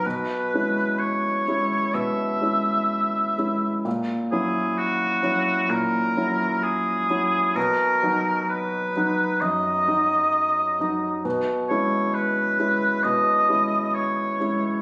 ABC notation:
X:1
M:4/4
L:1/8
Q:1/4=65
K:C#dor
V:1 name="Oboe"
B2 c2 e4 | z G F2 A2 G2 | A2 B2 d4 | z c B2 d2 c2 |]
V:2 name="Grand piano"
B,, [G,CE]2 [G,CE] B,, [G,CE]2 [G,CE] | A,, [F,CE]2 [F,CE] A,, [F,CE]2 [F,CE] | B,, [F,D]2 [F,D] F,, [F,D]2 [F,D] | B,, [G,CE]2 [G,CE] B,, [G,CE]2 [G,CE] |]